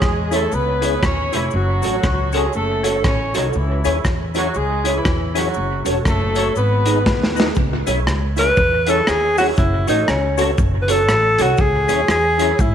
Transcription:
Already playing: horn section G#3 G#4
0.02 upright bass E2, kick, cross-stick, cabasa
0.31 horn section A3 A4, tonewheel organ C#4 E4 G#4 C#5, clean electric guitar E4 G#4 C#5, closed hi-hat, cabasa
0.52 upright bass C#2, horn section B3 B4, cabasa
0.81 tonewheel organ C#4 E4 G#4 C#5, clean electric guitar E4 G#4 C#5, closed hi-hat, cabasa
1.03 upright bass D#2, horn section C#4 C#5, kick, cross-stick, cabasa
1.32 upright bass F1, horn section E3 E4, tonewheel organ C#4 E4 G#4 C#5, clean electric guitar E4 G#4 C#5, closed hi-hat, cabasa
1.51 upright bass F#1, horn section F#3 F#4, cabasa
1.82 upright bass A1, tonewheel organ C#4 F#4 A4 C#5, clean electric guitar F#4 A4 C#5, closed hi-hat, cabasa
2.03 upright bass C#2, kick, cross-stick, cabasa
2.32 horn section G#3 G#4, tonewheel organ C#4 F#4 A4 C#5, clean electric guitar F#4 A4 C#5, closed hi-hat, cabasa
2.53 upright bass F#1, horn section A3 A4, cabasa
2.83 tonewheel organ C#4 F#4 A4 C#5, clean electric guitar F#4 A4 C#5, closed hi-hat, cabasa
3.04 upright bass A1, horn section C#4 C#5, kick, cross-stick, cabasa
3.34 upright bass C2, horn section D#3 D#4, tonewheel organ C#4 F#4 A4 C#5, clean electric guitar F#4 A4 C#5, closed hi-hat, cabasa
3.50 horn section F#3 F#4, cabasa
3.55 upright bass C#2, horn section E3 E4
3.84 upright bass D#2, tonewheel organ C#4 E4 G#4 C#5, clean electric guitar E4 G#4 C#5, closed hi-hat, cabasa
4.04 upright bass E2, kick, cross-stick, cabasa
4.34 horn section F#3 F#4, tonewheel organ C#4 E4 G#4 C#5, clean electric guitar E4 G#4 C#5, closed hi-hat, cabasa
4.54 upright bass C#2, horn section G#3 G#4, cabasa
4.84 tonewheel organ C#4 E4 G#4 C#5, clean electric guitar E4 G#4 C#5, closed hi-hat, cabasa
4.96 horn section E3 E4
5.05 upright bass E2, kick, cross-stick, cabasa
5.35 horn section F#3 F#4, tonewheel organ C#4 E4 G#4 C#5, clean electric guitar E4 G#4 C#5, closed hi-hat, cabasa
5.54 upright bass F#1, cabasa
5.85 upright bass E1, tonewheel organ C#4 F#4 A4 C#5, clean electric guitar F#4 A4 C#5, closed hi-hat, cabasa
6.05 upright bass F#1, horn section A3 A4, kick, cross-stick, cabasa
6.35 tonewheel organ C#4 F#4 A4 C#5, clean electric guitar F#4 A4 C#5, closed hi-hat, cabasa
6.56 upright bass G#1, horn section B3 B4, cabasa
6.85 tonewheel organ B3 D#4 G#4 B4, clean electric guitar D#4 G#4 B4, closed hi-hat, cabasa
7.06 upright bass D#2, kick, snare, cabasa
7.23 snare
7.36 tonewheel organ B3 D#4 G#4 B4, clean electric guitar D#4 G#4 B4, cabasa
7.40 snare
7.55 upright bass C#2, kick, cabasa
7.86 upright bass B1, tonewheel organ C#4 E4 G#4 C#5, clean electric guitar E4 G#4 C#5, closed hi-hat, cabasa
8.07 upright bass C#2, cross-stick, cabasa
8.37 tonewheel organ C#4 E4 G#4 C#5, clean electric guitar E4 G#4 C#5, alto saxophone B4, closed hi-hat, cabasa
8.57 upright bass E2, kick, cabasa
8.87 tonewheel organ C#4 E4 G#4 C#5, clean electric guitar E4 G#4 C#5, alto saxophone A4, closed hi-hat, cabasa
9.07 upright bass D#2, tonewheel organ G#4 C#5, alto saxophone G#4, cross-stick, cabasa
9.37 tonewheel organ C#4 E4 G#4 C#5, clean electric guitar E4 G#4 C#5, alto saxophone F#4, open hi-hat, cabasa
9.56 upright bass F#1, alto saxophone E4, kick, hi-hat pedal, cabasa
9.87 upright bass A1, tonewheel organ C#4 F#4 A4 C#5, alto saxophone D#4, clean electric guitar F#4 A4 C#5, closed hi-hat, cabasa
10.08 upright bass C#2, alto saxophone C#4, cross-stick, cabasa
10.38 tonewheel organ C#4 F#4 A4 C#5, clean electric guitar F#4 A4 C#5, closed hi-hat, cabasa
10.58 upright bass F#1, kick, cabasa
10.82 alto saxophone B4
10.88 tonewheel organ C#4 F#4 A4 C#5, clean electric guitar F#4 A4 C#5, alto saxophone A4, closed hi-hat, cabasa
11.09 upright bass A1, tonewheel organ A4 C#5, cross-stick, cabasa
11.38 upright bass C2, tonewheel organ C#4 F#4 A4 C#5, clean electric guitar F#4 A4 C#5, alto saxophone F#4, closed hi-hat, cabasa
11.57 upright bass C#2, alto saxophone G#4, kick, cabasa
11.88 upright bass D#2, tonewheel organ C#4 E4 G#4 C#5, clean electric guitar E4 G#4 C#5, closed hi-hat, cabasa
12.08 upright bass E2, alto saxophone G#4, cross-stick, cabasa
12.38 tonewheel organ C#4 E4 G#4 C#5, clean electric guitar E4 G#4 C#5, closed hi-hat, cabasa
12.59 upright bass G#2, alto saxophone E4, kick, cabasa

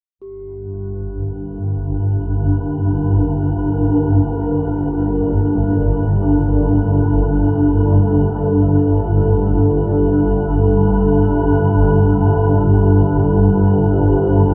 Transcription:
0.19 synth drone G1 G2, analog synth pad G3, singing bowl G4
0.83 analog synth pad A#4
1.36 analog synth pad D4
2.90 analog synth pad A4
13.50 analog synth pad C5

